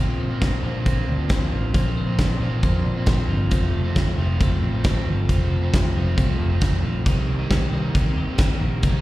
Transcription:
Already playing: A#1 D3 F3 A#3 C4
0.00 C4 F4
0.20 C4
0.29 A#2 D3 A#3 C4 F4
0.41 D4, kick, snare, closed hi-hat
0.62 A#1 D3 F3 A#3 C4 F4
0.85 D3 A#3 C4 F4, kick, closed hi-hat
1.08 D2 D4
1.18 A#3 C4 F4
1.30 C4, kick, snare, closed hi-hat
1.40 A#3 C4 F4
1.52 A1 F3
1.74 A#1 D3 F3 A#3 C4 F4, kick, closed hi-hat
1.97 C4
2.07 A#2 D3 A#3 C4 F4
2.19 D4, kick, snare, closed hi-hat
2.40 A#1 D3 F3 A#3 C4 F4
2.62 F2 D3 A#3 C4 F4, kick, closed hi-hat
2.85 A#1 D4
2.95 A#3 C4 F4
3.06 C4, kick, snare, closed hi-hat
3.17 A#3 C4 F4
3.29 G1 F3
3.50 F1 F3 A3 C4 F4, kick, closed hi-hat
3.73 A3
3.84 F3 A3 C4 F4
3.96 C4, kick, snare, closed hi-hat
4.17 F1 F3 A3 C4 F4
4.40 F3 A3 C4 F4, kick, closed hi-hat
4.62 A1 C4
4.73 A3 C4 F4
4.84 A3, kick, snare, closed hi-hat
4.95 A3 C4 F4
5.07 G1 F3
5.28 F1 F3 A3 C4 F4, kick, closed hi-hat
5.51 A3
5.61 F3 A3 C4 F4
5.73 C4, kick, snare, closed hi-hat
5.95 F1 F3 A3 C4 F4
6.17 C2 F3 A3 C4 F4, kick, closed hi-hat
6.40 F1 C4
6.49 A3 C4 F4
6.61 A3, kick, snare, closed hi-hat
6.72 A3 C4 F4
6.83 A#1 F3
7.05 C2 C3 D#3 G3 A#3 D#4, kick, closed hi-hat
7.29 C4
7.39 C3 G3 A#3 D#4
7.51 G4, kick, snare, closed hi-hat
7.72 C2 C3 G3 A#3 D#4
7.94 C3 G3 A#3 C4 D#4, kick, closed hi-hat
8.17 D#2 G4
8.28 G3 A#3 D#4
8.38 C4, kick, snare, closed hi-hat
8.49 G3 A#3 D#4
8.61 A#1 A#3
8.83 C2 C3 D#3 G3 A#3 D#4, kick, closed hi-hat

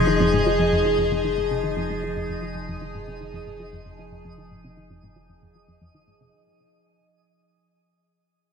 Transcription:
Already playing: F1 F3 D#4 G#4 D#5
0.07 D#3
0.20 F2
0.34 G#2
0.47 F3
0.60 F2
0.73 F2
0.86 F3
0.99 F2
1.12 F2
1.25 D#3
1.38 G#2
1.51 C3
1.64 D#3
1.77 F2
1.90 G#2
2.03 F3
2.16 F2
2.29 F2
2.42 F3
2.55 F2
2.69 F2
2.82 D#3
2.95 G#2
3.08 C3
3.21 D#3
3.34 F2
3.47 G#2
3.60 F3
3.73 F2
3.86 F2
3.99 F3
4.12 F2
4.25 F2
4.38 D#3
4.51 G#2
4.64 C3
4.77 D#3
4.91 F2
5.03 G#2
5.16 F3
5.30 F2
5.43 F2
5.55 F3
5.68 F2
5.81 F2
5.95 D#3
6.08 G#2
6.21 C3

